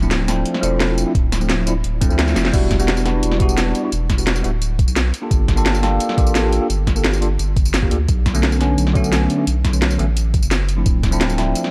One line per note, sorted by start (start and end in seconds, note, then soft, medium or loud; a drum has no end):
0.00 0.44 D1 loud
0.00 0.26 F3 medium
0.00 0.26 A3 medium
0.00 0.26 C4 medium
0.00 0.27 D4 medium
0.00 0.27 E4 loud
0.00 tambourine soft
0.11 snare loud
0.11 closed hi-hat medium
0.27 0.60 F3 medium
0.27 0.61 A3 medium
0.27 0.61 C4 medium
0.27 0.61 D4 medium
0.27 0.61 E4 loud
0.27 snare soft
0.27 closed hi-hat medium
0.27 tambourine medium
0.46 closed hi-hat medium
0.54 snare soft
0.61 1.05 E1 loud
0.61 1.03 F3 loud
0.61 1.04 A3 medium
0.61 1.04 C4 medium
0.61 1.05 D4 medium
0.61 1.05 E4 loud
0.61 closed hi-hat loud
0.61 tambourine medium
0.80 snare loud
0.80 closed hi-hat medium
0.98 open hi-hat medium
0.98 tambourine medium
1.05 1.11 F3 medium
1.05 1.11 A3 medium
1.05 1.12 C4 medium
1.05 1.12 D4 medium
1.05 1.12 E4 medium
1.15 1.83 D1 loud
1.15 kick loud
1.15 closed hi-hat medium
1.32 snare medium
1.32 closed hi-hat loud
1.32 tambourine medium
1.40 1.65 F3 medium
1.40 1.65 A3 medium
1.40 1.65 C4 medium
1.40 1.65 D4 medium
1.40 1.65 E4 medium
1.40 tambourine soft
1.50 snare loud
1.50 closed hi-hat medium
1.66 1.72 F3 medium
1.66 1.72 A3 medium
1.66 1.72 C4 medium
1.66 1.73 D4 medium
1.66 1.73 E4 loud
1.66 closed hi-hat loud
1.66 tambourine medium
1.84 2.09 D1 medium
1.84 closed hi-hat medium
2.01 2.07 F3 medium
2.01 2.08 A3 medium
2.01 2.09 C4 medium
2.01 2.09 D4 medium
2.01 2.09 E4 loud
2.01 kick loud
2.01 closed hi-hat loud
2.01 tambourine medium
2.09 2.35 D2 loud
2.09 2.52 F3 medium
2.09 2.52 A3 medium
2.09 2.53 C4 medium
2.09 2.52 D4 medium
2.09 2.53 E4 loud
2.09 tambourine soft
2.19 snare loud
2.19 closed hi-hat medium
2.28 snare medium
2.28 tambourine soft
2.36 2.52 F1 medium
2.36 snare medium
2.36 open hi-hat medium
2.36 tambourine medium
2.45 snare medium
2.53 3.22 E1 loud
2.53 2.76 G3 loud
2.53 2.76 B3 medium
2.53 2.76 D4 medium
2.53 2.76 E4 loud
2.53 2.77 F#4 loud
2.53 kick loud
2.53 closed hi-hat loud
2.53 crash loud
2.53 tambourine medium
2.71 kick medium
2.71 snare medium
2.71 closed hi-hat medium
2.71 tambourine soft
2.79 3.03 G3 medium
2.79 3.04 B3 medium
2.79 3.04 D4 medium
2.79 3.04 E4 medium
2.79 3.04 F#4 loud
2.79 tambourine medium
2.88 snare loud
2.88 closed hi-hat medium
2.97 tambourine medium
3.05 3.37 G3 medium
3.05 3.38 B3 medium
3.05 3.38 D4 medium
3.05 3.38 E4 medium
3.05 3.39 F#4 loud
3.05 snare soft
3.05 open hi-hat medium
3.05 tambourine soft
3.23 3.74 E1 loud
3.23 closed hi-hat loud
3.23 tambourine medium
3.32 snare soft
3.39 3.81 G3 loud
3.39 3.81 B3 medium
3.39 3.82 D4 medium
3.39 3.82 E4 medium
3.39 3.83 F#4 loud
3.39 kick loud
3.39 closed hi-hat medium
3.39 tambourine soft
3.49 tambourine medium
3.58 snare loud
3.58 closed hi-hat medium
3.58 tambourine soft
3.75 open hi-hat medium
3.75 tambourine soft
3.83 3.89 G3 medium
3.83 3.89 B3 medium
3.83 3.89 D4 medium
3.83 3.89 E4 medium
3.83 3.90 F#4 medium
3.92 4.43 E1 loud
3.92 closed hi-hat loud
3.92 tambourine soft
4.10 kick medium
4.10 snare medium
4.10 closed hi-hat medium
4.10 tambourine soft
4.17 4.42 G3 medium
4.17 4.42 B3 medium
4.17 4.42 D4 medium
4.17 4.43 E4 medium
4.17 4.43 F#4 medium
4.17 tambourine medium
4.27 snare loud
4.27 closed hi-hat medium
4.36 tambourine soft
4.43 4.86 D1 loud
4.43 4.49 G3 medium
4.43 4.50 B3 medium
4.43 4.50 D4 medium
4.43 4.50 E4 medium
4.43 4.50 F#4 loud
4.43 open hi-hat medium
4.43 tambourine soft
4.62 closed hi-hat loud
4.62 tambourine soft
4.79 kick loud
4.79 closed hi-hat medium
4.79 tambourine soft
4.88 5.12 B1 loud
4.88 tambourine medium
4.96 snare loud
4.96 closed hi-hat medium
4.96 tambourine soft
5.14 open hi-hat medium
5.14 tambourine soft
5.22 5.55 A#3 medium
5.22 5.55 D4 medium
5.22 5.55 F4 medium
5.22 5.55 G4 medium
5.22 5.56 A4 medium
5.31 5.99 G1 loud
5.31 kick loud
5.31 closed hi-hat medium
5.31 tambourine soft
5.48 kick medium
5.48 snare medium
5.48 closed hi-hat medium
5.48 tambourine soft
5.56 5.81 A#3 loud
5.56 5.81 D4 medium
5.56 5.81 F4 medium
5.56 5.81 G4 medium
5.56 5.81 A4 loud
5.56 tambourine medium
5.66 snare loud
5.66 closed hi-hat medium
5.75 tambourine soft
5.82 6.15 A#3 medium
5.82 6.16 D4 medium
5.82 6.16 F4 medium
5.82 6.16 G4 medium
5.82 6.16 A4 loud
5.82 snare soft
5.82 open hi-hat medium
5.82 tambourine soft
6.00 closed hi-hat medium
6.00 tambourine soft
6.09 snare soft
6.16 6.60 A1 loud
6.16 6.58 A#3 loud
6.16 6.59 D4 medium
6.16 6.59 F4 medium
6.16 6.60 G4 medium
6.16 6.60 A4 loud
6.16 kick loud
6.16 closed hi-hat medium
6.16 tambourine soft
6.27 tambourine medium
6.35 snare loud
6.35 closed hi-hat medium
6.35 tambourine soft
6.53 open hi-hat medium
6.53 tambourine soft
6.60 6.66 A#3 medium
6.60 6.66 D4 medium
6.60 6.66 F4 medium
6.60 6.67 G4 medium
6.60 6.67 A4 medium
6.70 7.38 G1 loud
6.70 closed hi-hat medium
6.70 tambourine soft
6.87 kick medium
6.87 snare medium
6.87 closed hi-hat medium
6.87 tambourine soft
6.95 7.19 A#3 medium
6.95 7.20 D4 medium
6.95 7.20 F4 medium
6.95 7.20 G4 medium
6.95 7.20 A4 medium
6.95 tambourine medium
7.04 snare loud
7.04 closed hi-hat medium
7.13 tambourine soft
7.21 7.27 A#3 medium
7.21 7.27 D4 medium
7.21 7.27 F4 medium
7.21 7.28 G4 medium
7.21 7.28 A4 loud
7.21 open hi-hat medium
7.21 tambourine soft
7.39 7.73 G1 medium
7.39 closed hi-hat medium
7.39 tambourine soft
7.57 kick loud
7.57 closed hi-hat medium
7.57 tambourine soft
7.65 tambourine medium
7.74 7.90 G1 medium
7.74 snare loud
7.74 closed hi-hat medium
7.74 tambourine soft
7.82 7.89 A#3 medium
7.82 7.89 D4 medium
7.82 7.89 F4 medium
7.82 7.89 G4 medium
7.82 7.90 A#4 medium
7.82 kick medium
7.90 8.07 D2 medium
7.90 7.96 A#3 medium
7.90 7.96 D4 medium
7.90 7.97 F4 medium
7.90 7.97 G4 medium
7.90 7.97 A4 medium
7.90 open hi-hat medium
7.90 tambourine soft
8.08 8.77 B1 loud
8.08 kick loud
8.08 closed hi-hat medium
8.08 tambourine medium
8.26 kick medium
8.26 snare medium
8.26 closed hi-hat medium
8.26 tambourine soft
8.34 8.58 D3 loud
8.34 8.58 F#3 medium
8.34 8.59 A3 medium
8.34 8.59 B3 medium
8.34 8.59 C#4 loud
8.34 tambourine medium
8.43 snare loud
8.43 closed hi-hat medium
8.52 tambourine medium
8.60 8.92 D3 medium
8.60 8.93 F#3 medium
8.60 8.93 A3 medium
8.60 8.93 B3 medium
8.60 8.94 C#4 loud
8.60 snare soft
8.60 open hi-hat medium
8.60 tambourine soft
8.78 9.29 B1 medium
8.78 closed hi-hat medium
8.78 tambourine soft
8.87 snare soft
8.93 9.36 D3 loud
8.93 9.36 F#3 medium
8.93 9.37 A3 medium
8.93 9.37 B3 medium
8.93 9.37 C#4 loud
8.93 kick loud
8.93 closed hi-hat medium
8.93 tambourine soft
9.04 tambourine medium
9.13 snare loud
9.13 closed hi-hat medium
9.13 tambourine soft
9.30 open hi-hat medium
9.30 tambourine soft
9.38 9.44 D3 medium
9.38 9.44 F#3 medium
9.38 9.44 A3 medium
9.38 9.44 B3 medium
9.38 9.44 C#4 medium
9.47 9.98 B1 loud
9.47 closed hi-hat medium
9.47 tambourine medium
9.65 kick medium
9.65 snare medium
9.65 closed hi-hat medium
9.65 tambourine soft
9.72 9.97 D3 medium
9.72 9.97 F#3 medium
9.72 9.97 A3 medium
9.72 9.97 B3 medium
9.72 9.98 C#4 medium
9.72 tambourine medium
9.82 snare loud
9.82 closed hi-hat medium
9.91 tambourine medium
9.98 10.41 A1 loud
9.98 10.04 D3 medium
9.98 10.05 F#3 medium
9.98 10.05 A3 medium
9.98 10.05 B3 medium
9.98 10.05 C#4 loud
9.98 open hi-hat medium
9.98 tambourine soft
10.17 closed hi-hat loud
10.17 tambourine medium
10.34 kick loud
10.34 closed hi-hat medium
10.34 tambourine soft
10.43 10.85 F#1 loud
10.43 tambourine medium
10.51 snare loud
10.51 closed hi-hat medium
10.51 tambourine medium
10.69 open hi-hat medium
10.69 tambourine soft
10.77 11.10 F3 medium
10.77 11.10 A3 medium
10.77 11.10 C4 medium
10.77 11.10 D4 medium
10.77 11.10 E4 medium
10.86 11.54 D1 loud
10.86 kick loud
10.86 closed hi-hat loud
10.86 tambourine medium
11.03 kick medium
11.03 snare medium
11.03 closed hi-hat medium
11.03 tambourine soft
11.11 11.36 F3 loud
11.11 11.36 A3 medium
11.11 11.36 C4 medium
11.11 11.36 D4 medium
11.11 11.37 E4 loud
11.11 tambourine medium
11.21 snare loud
11.21 closed hi-hat medium
11.30 tambourine medium
11.37 11.70 F3 medium
11.37 11.70 A3 medium
11.37 11.71 C4 medium
11.37 11.71 D4 medium
11.37 11.71 E4 loud
11.37 snare soft
11.37 open hi-hat medium
11.37 tambourine soft
11.55 closed hi-hat loud
11.55 tambourine medium
11.64 snare soft